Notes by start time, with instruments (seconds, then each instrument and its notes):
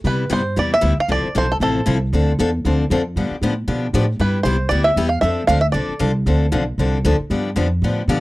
0.04 upright bass C3, steel-string acoustic guitar C3 G3 B3 E4 G4, five-string banjo B4
0.30 upright bass G2, steel-string acoustic guitar C3 G3 B3 E4 G4, five-string banjo C5
0.56 upright bass E2, steel-string acoustic guitar C3 G3 B3 E4 G4, five-string banjo D5
0.74 five-string banjo E5
0.81 upright bass D2, steel-string acoustic guitar C3 G3 B3 E4 G4
0.98 five-string banjo F5, muted upright bass stroke
1.08 upright bass C2, steel-string acoustic guitar C3 F3 C4 E4 A4, five-string banjo D5
1.24 muted upright bass stroke
1.35 upright bass B1, steel-string acoustic guitar C3 F3 C4 E4 A4, five-string banjo C5
1.52 five-string banjo A4
1.60 upright bass A1, steel-string acoustic guitar C3 F3 C4 E4 A4, five-string banjo A4
1.86 upright bass C2, steel-string acoustic guitar C3 F3 C4 E4 A4
2.13 upright bass D2, steel-string acoustic guitar D3 F3 C4 D4 A4
2.39 upright bass E2, steel-string acoustic guitar D3 F3 C4 D4 A4
2.65 upright bass D2, steel-string acoustic guitar D3 F3 C4 D4 A4
2.90 upright bass F2, steel-string acoustic guitar D3 F3 C4 D4 A4
3.16 upright bass G2, steel-string acoustic guitar D3 F3 B3 D4 G4
3.31 muted upright bass stroke
3.41 upright bass A2, steel-string acoustic guitar D3 F3 B3 D4 G4
3.68 upright bass B2, steel-string acoustic guitar D3 F3 B3 D4 G4
3.93 upright bass A2, steel-string acoustic guitar D3 F3 B3 D4 G4
4.19 upright bass G2, steel-string acoustic guitar C3 G3 B3 E4 G4, five-string banjo B4
4.43 upright bass C2, steel-string acoustic guitar C3 G3 B3 E4 G4, five-string banjo C5
4.69 upright bass D2, steel-string acoustic guitar C3 G3 B3 E4 G4, five-string banjo D5
4.84 five-string banjo E5
4.96 upright bass E2, steel-string acoustic guitar C3 G3 B3 E4 G4
5.09 five-string banjo F5
5.21 upright bass F2, steel-string acoustic guitar F3 C4 D4 A4, five-string banjo E5
5.47 upright bass D2, steel-string acoustic guitar F3 C4 D4 A4, five-string banjo F5
5.61 five-string banjo E5
5.72 upright bass B1, steel-string acoustic guitar F3 C4 D4 A4, five-string banjo D5
5.89 muted upright bass stroke
5.99 upright bass C2, steel-string acoustic guitar F3 C4 D4 A4
6.26 upright bass D2, steel-string acoustic guitar D3 F3 C4 D4 A4
6.52 upright bass B1, steel-string acoustic guitar D3 F3 C4 D4 A4
6.78 upright bass C2, steel-string acoustic guitar D3 F3 C4 D4 A4
7.04 upright bass D2, steel-string acoustic guitar D3 F3 C4 D4 A4
7.19 muted upright bass stroke
7.30 upright bass G2, steel-string acoustic guitar D3 F3 B3 D4 G4
7.56 upright bass F2, steel-string acoustic guitar D3 F3 B3 D4 G4
7.82 upright bass A2, steel-string acoustic guitar D3 F3 B3 D4 G4
8.08 upright bass B2, steel-string acoustic guitar D3 F3 B3 D4 G4